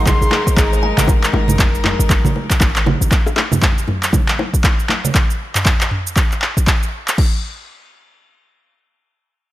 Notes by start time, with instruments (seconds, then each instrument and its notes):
Already playing: 808-style bass G#1, string section G#3 D#4 A#4
0.06 kalimba G#4, flute C6, kick, clap, low bongo, high conga, low conga, shaker
0.21 808-style bass G#1, kalimba G#4, shaker
0.31 kalimba G#4, clap, low bongo, high conga
0.47 kalimba C5, kick, shaker
0.52 flute C6
0.57 808-style bass G#1, kalimba G#4, flute A#5, kick, clap, low bongo, shaker
0.72 kalimba C5, shaker
0.83 kalimba G#5, low bongo, high conga
0.98 808-style bass G#1, kalimba F#5, clap, low conga, shaker
1.07 kick, low bongo, shaker
1.23 clap, shaker
1.33 808-style bass G#1, high bongo, low bongo
1.48 mid tom, high conga, low conga, shaker
1.59 kick, clap, low bongo, shaker
1.74 808-style bass F#1, shaker
1.84 clap, mid tom, low bongo, high conga
1.99 808-style bass G#1, shaker
2.09 kick, clap, high bongo, low bongo, high conga, shaker
2.25 808-style bass G#1, low conga, shaker
2.36 low bongo
2.50 kick, clap, shaker
2.60 808-style bass G#1, kick, clap, low bongo, shaker
2.76 clap, shaker
2.86 low bongo, high conga, low conga
3.01 808-style bass G#1, shaker
3.12 kick, clap, low bongo, shaker
3.27 high bongo, shaker
3.36 clap, high bongo, low bongo
3.52 mid tom, high conga, low conga, shaker
3.62 kick, clap, low bongo, shaker
3.78 shaker
3.88 mid tom, low bongo, high conga
4.03 clap, shaker
4.13 kick, low bongo, high conga, low conga, shaker
4.28 clap, shaker
4.39 low bongo, high conga
4.54 kick, shaker
4.64 kick, clap, low bongo, shaker
4.80 shaker
4.89 clap, low bongo, high conga
5.05 low conga, shaker
5.15 kick, clap, shaker
5.30 shaker
5.55 clap, mid tom, shaker
5.66 kick, clap, shaker
5.81 clap, shaker
5.91 mid tom
6.07 shaker
6.16 kick, clap, shaker
6.32 clap, shaker
6.42 clap
6.57 kick, shaker
6.67 kick, clap, shaker
6.83 shaker
7.08 clap, shaker
7.18 kick, crash